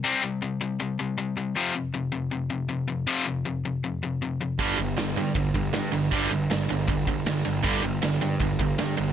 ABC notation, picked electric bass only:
X:1
M:4/4
L:1/8
Q:1/4=157
K:Fmix
V:1 name="Picked electric bass" clef=bass
z8 | z8 | z8 | G,,, G,,, G,,, G,, G,,, G,,, G,, G,,, |
G,,, G,,, G,,, G,,, G,,, G,,, G,,, G,,, | G,,, G,,, G,,, G,, G,,, G,,, G,, G,,, |]